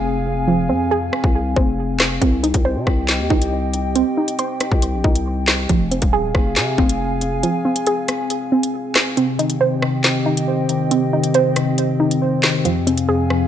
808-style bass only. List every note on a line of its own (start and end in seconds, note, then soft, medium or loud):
0.00 0.71 F1 loud
0.69 1.11 F2 loud
1.24 1.55 C2 loud
1.56 2.19 F1 loud
2.22 2.53 C2 loud
2.54 2.77 C2 loud
2.76 2.86 C3 loud
2.87 3.21 C2 loud
3.19 3.30 D#2 loud
3.30 4.03 C2 loud
4.72 4.95 C2 loud
4.93 5.04 A#1 loud
5.04 5.67 C2 loud
5.69 6.01 F1 loud
6.02 6.33 D#1 loud
6.35 6.58 F1 loud
6.56 6.77 C3 loud
6.78 7.43 F1 loud